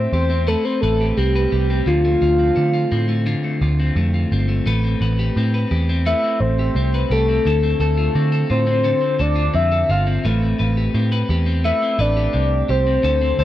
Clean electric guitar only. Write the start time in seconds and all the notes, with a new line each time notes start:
Already playing: A3 C4 G4
0.13 G4
0.30 C4
0.47 A3 B4
0.65 C4
0.83 B4
1.01 G4
1.18 C4
1.36 B4
1.52 G4
1.70 C4
1.87 D3 F4
2.05 A3
2.22 F4
2.39 C4
2.56 A3
2.73 F4
2.92 C4
3.08 A3
3.26 D3 F4
3.44 A3
3.62 F4
3.80 C4
3.97 A3
4.14 F4
4.32 C4
4.49 A3
4.66 A3 B4
4.84 C4
5.02 B4
5.19 G4
5.37 C4
5.54 B4
5.71 G4
5.89 C4
6.06 A3 B4
6.24 C4
6.59 G4
6.76 C4
6.94 B4
7.11 G4
7.29 C4
7.46 D3 A4
7.63 C4
7.80 A4
7.97 F4
8.15 C4
8.32 A4
8.50 F4
8.67 C4
8.84 D3 A4
9.01 C4
9.19 A4
9.35 F4
9.54 C4
9.72 A4
9.90 F4
10.07 C4
10.25 A3 B4
10.42 C4
10.59 B4
10.77 G4
10.95 C4
11.12 B4
11.30 G4
11.46 C4
11.64 A3 B4
11.82 C4
11.99 B4
12.17 G4
12.33 C4
12.69 G4
12.87 C4
13.03 D3 A4
13.21 C4
13.39 A4